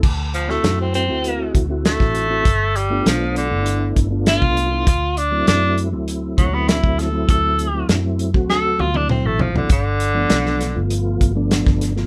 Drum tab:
CC |x---------------|----------------|----------------|----------------|
HH |--x-x-x-x-x-x-x-|x-x-x-x-x-x-x-x-|x-x-x-x-x-x-x-x-|x-x-x-x---------|
SD |---oo-------oo--|----o-------o---|----o-------o-o-|----o---o-------|
T1 |----------------|----------------|----------------|----------oo----|
T2 |----------------|----------------|----------------|------------o---|
FT |----------------|----------------|----------------|--------------oo|
BD |o---------o--o--|o---------o--o--|o---------o--o--|o------o--------|

CC |----------------|
HH |x-x-x-x-x-x-x-x-|
SD |----ooo-----oooo|
T1 |----------------|
T2 |----------------|
FT |----------------|
BD |o---------o--o--|